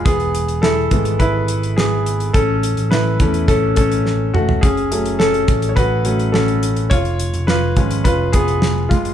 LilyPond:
<<
  \new Staff \with { instrumentName = "Grand piano" } { \time 4/4 \key fis \minor \tempo 4 = 105 << { gis'4 a'4 b'4 gis'4 | a'4 b'4 a'8 a'4 fis'8 | gis'4 a'8.~ a'32 cis''32 b'4 a'4 | cis''4 b'4 b'8 gis'4 eis'8 | } \\ { b4 e'4 e'4 b4 | cis'4 e'4 cis'8 cis'4 a8 | cis'4 cis'4 fis'4 cis'4 | eis'4 eis'4 eis'8 b4 gis8 | } >> }
  \new Staff \with { instrumentName = "Grand piano" } { \time 4/4 \key fis \minor r4. <e gis b>8 r2 | r4. <e a cis'>4. r4 | r8 <fis a cis'>8 r4. <fis a cis'>8 r4 | r4. <eis gis cis'>4. r4 | }
  \new Staff \with { instrumentName = "Picked electric bass" } { \clef bass \time 4/4 \key fis \minor e,,4. gis,,2~ gis,,8 | a,,8. a,,8. e,8 a,,4. e,,8 | r4. a,,2~ a,,8 | eis,,8. eis,,8. gis,,8 eis,,4. fis,,8 | }
  \new DrumStaff \with { instrumentName = "Drums" } \drummode { \time 4/4 <hh bd>16 hh16 hh16 hh16 sn8 <hh bd>16 hh16 <hh bd>8 hh16 hh16 sn8 hh16 hh16 | <hh bd>8 hh16 hh16 sn8 <hh bd>16 hh16 <hh bd>8 <hh bd>16 hh16 sn8 toml16 tomfh16 | <hh bd>16 hh16 hh16 hh16 sn16 hh16 <hh bd>16 hh16 <hh bd>8 hh16 hh16 sn16 hh16 hh16 hh16 | <hh bd>16 hh16 hh16 hh16 sn8 <hh bd>16 hh16 <hh bd>8 <hh bd>16 hh16 sn8 <hh bd>16 hh16 | }
>>